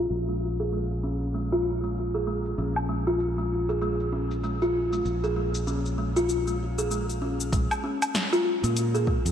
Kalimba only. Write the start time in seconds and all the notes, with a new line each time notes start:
Already playing: F4
0.29 G#3
0.60 G#4
0.73 G#3
1.03 C#4
1.34 G#3
1.52 F4
1.84 G#3
2.14 G#4
2.27 G#3
2.58 C#4
2.89 G#3
3.07 F4
3.38 G#3
3.69 G#4
3.82 G#3
4.13 C#4
4.43 G#3
4.62 F4
4.93 G#3
5.24 G#4
5.36 G#3
5.67 C#4
5.98 G#3
6.16 F4
6.47 G#3
6.78 G#4
6.91 G#3
7.22 C#4
7.53 G#3
7.84 C#4
8.14 G#3
8.33 F4
8.64 G#3
8.95 G#4
9.07 G#3